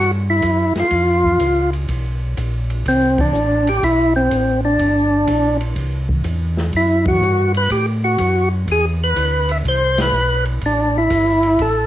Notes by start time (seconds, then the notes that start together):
Already playing: G2 F#4
0.30 E4
0.42 F#2, kick, hi-hat pedal, ride
0.75 F#2, snare, ride
0.80 F4
0.91 F2, kick, ride
1.24 kick
1.40 C#2, kick, hi-hat pedal, ride
1.73 ride
1.89 B1, kick, ride
2.37 A#1, kick, hi-hat pedal, ride
2.70 ride
2.86 C2 C4, kick, ride
3.18 D4, kick, ride
3.33 A1, hi-hat pedal
3.67 G4, ride
3.83 B1 E4, kick, ride
4.16 C4
4.31 A1, kick, hi-hat pedal, ride
4.65 D4
4.79 G1, kick, ride
5.27 A#1, kick, hi-hat pedal, ride
5.61 ride
5.76 C2, kick, ride
6.09 kick
6.24 E2, kick, hi-hat pedal, ride
6.57 snare
6.73 F#2 E4, kick, ride
7.05 F#4, kick, ride
7.21 G2, hi-hat pedal
7.54 B4, ride
7.70 A2 G4, kick, ride
8.04 F#4
8.18 F#2, kick, hi-hat pedal, ride
8.67 E2, kick, ride
8.72 G#4
9.04 B4
9.16 D2, kick, hi-hat pedal, ride
9.49 E5, ride
9.65 C2 C5, kick, ride
9.98 B4, snare, ride
10.12 B1, hi-hat pedal
10.46 ride
10.61 A1, kick, ride
10.66 D4
10.98 E4
11.10 G1, kick, hi-hat pedal, ride
11.43 ride
11.59 A1 A4, kick, ride